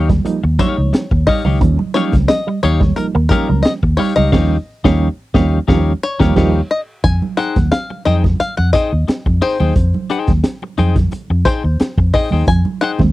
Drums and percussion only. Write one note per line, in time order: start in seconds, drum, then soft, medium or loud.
0.09 kick medium
0.09 snare soft
0.09 closed hi-hat soft
0.09 high conga medium
0.09 low conga medium
0.25 closed hi-hat medium
0.44 muted conga soft
0.59 kick medium
0.59 snare soft
0.59 closed hi-hat medium
0.59 high conga medium
0.94 snare loud
0.94 closed hi-hat medium
1.11 kick loud
1.11 muted conga soft
1.27 kick loud
1.27 snare soft
1.27 open hi-hat medium
1.45 high conga medium
1.61 kick loud
1.61 closed hi-hat medium
1.61 muted conga soft
1.61 low conga medium
1.79 high conga medium
1.95 closed hi-hat medium
2.12 kick medium
2.12 snare soft
2.12 closed hi-hat soft
2.12 high conga medium
2.29 snare loud
2.29 closed hi-hat loud
2.63 closed hi-hat medium
2.63 high conga medium
2.81 kick medium
2.81 snare soft
2.81 high conga medium
2.81 low conga medium
2.97 closed hi-hat medium
3.15 muted conga soft
3.31 kick medium
3.31 snare soft
3.31 closed hi-hat medium
3.31 high conga medium
3.64 snare loud
3.64 closed hi-hat medium
3.64 muted conga soft
3.83 kick medium
3.99 snare soft
3.99 open hi-hat medium
4.16 high conga medium
4.33 kick loud
4.33 snare loud
4.33 crash medium
4.85 kick loud
4.85 snare loud
5.34 kick loud
5.34 snare loud
5.68 kick loud
5.68 snare loud
6.20 kick loud
6.20 snare loud
6.36 kick loud
6.36 snare loud
6.36 crash medium
7.04 kick loud
7.04 closed hi-hat medium
7.04 muted conga soft
7.04 low conga medium
7.22 high conga medium
7.38 closed hi-hat medium
7.56 kick medium
7.56 snare soft
7.56 closed hi-hat soft
7.56 high conga medium
7.72 snare loud
7.72 closed hi-hat loud
7.90 muted conga soft
8.06 snare soft
8.06 closed hi-hat medium
8.06 high conga medium
8.24 kick medium
8.24 snare soft
8.24 high conga medium
8.24 low conga medium
8.40 closed hi-hat medium
8.40 muted conga soft
8.58 muted conga soft
8.74 kick medium
8.74 snare soft
8.74 closed hi-hat medium
9.08 snare medium
9.08 closed hi-hat medium
9.08 muted conga soft
9.26 kick medium
9.26 muted conga soft
9.42 snare soft
9.42 open hi-hat medium
9.60 high conga medium
9.76 kick loud
9.76 closed hi-hat medium
9.76 low conga medium
9.94 muted conga soft
9.94 high conga medium
10.10 closed hi-hat medium
10.27 kick medium
10.27 snare soft
10.27 closed hi-hat soft
10.27 high conga medium
10.44 snare loud
10.44 closed hi-hat loud
10.62 muted conga soft
10.78 closed hi-hat medium
10.78 high conga medium
10.96 kick medium
10.96 snare soft
10.96 closed hi-hat soft
10.96 high conga medium
10.96 low conga medium
11.11 closed hi-hat medium
11.11 muted conga soft
11.45 kick loud
11.45 closed hi-hat medium
11.80 snare loud
11.80 closed hi-hat medium
11.80 muted conga soft
11.98 kick loud
12.13 kick loud
12.13 snare soft
12.13 open hi-hat medium
12.31 high conga medium
12.47 kick loud
12.47 closed hi-hat medium
12.47 muted conga soft
12.47 low conga medium
12.65 muted conga soft
12.65 high conga medium
12.81 closed hi-hat medium
12.99 kick medium
12.99 snare soft
12.99 high conga medium